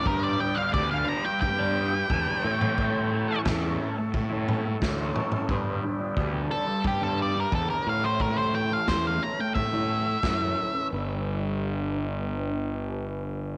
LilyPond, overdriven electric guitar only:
\new Staff \with { instrumentName = "Overdriven electric guitar" } { \time 4/4 \key g \lydian \tempo 4 = 88 <g, d g b d'>8 <d g b d'>16 <g b d'>16 <g, d g b d'>8 <d g b d'>8. <g b d'>8. <g, d g b d'>8 <a, e a cis' e'>16 <a cis' e'>16 | <a, e a cis' e'>8 <e a cis' e'>16 <a cis' e'>16 <a, e a cis' e'>8 <e a cis' e'>8. <a cis' e'>8. <a, e a cis' e'>8 <e a cis' e'>16 <a cis' e'>16 | <g, d g b d'>8 <d g b d'>16 <g b d'>16 <g, d g b d'>8 <d g b d'>8. <g b d'>8. <g, d g b d'>8 <a, e a cis' e'>16 <a cis' e'>16 | <a, e a cis' e'>8 <e a cis' e'>16 <a cis' e'>16 <a, e a cis' e'>8 <e a cis' e'>8. <a cis' e'>8. <a, e a cis' e'>8 <e a cis' e'>16 <a cis' e'>16 |
<g, d g b d' g'>1 | }